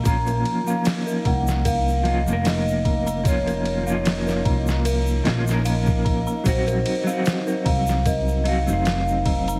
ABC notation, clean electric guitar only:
X:1
M:4/4
L:1/16
Q:"Swing 16ths" 1/4=75
K:Bbm
V:1 name="Clean electric guitar"
[F,B,DF]3 [F,B,D]6- [F,B,D] [F,B,DF] [F,B,DB]4- [F,B,DB] | [F,B,DF]3 [F,B,DF]6- [F,B,DF] [F,B,DF] [F,B,DB]4- [F,B,DB] | [G,CEG]3 [G,CEG]6- [G,CEG] [G,CEG] [G,CEc]4- [G,CEc] |]